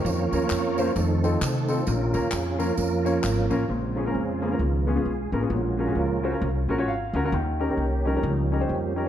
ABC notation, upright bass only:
X:1
M:4/4
L:1/8
Q:"Swing" 1/4=132
K:Bbm
V:1 name="Upright bass" clef=bass
F,, E,, F,,2 F,,2 C,2 | B,,, E,, F,,2 F,,2 A,,, =A,,, | B,,,2 F,,2 D,,2 _C,, =A,,, | B,,,2 D,,2 C,, B,,, A,,, =D,, |
E,,2 C,,2 D,,2 F,,2 |]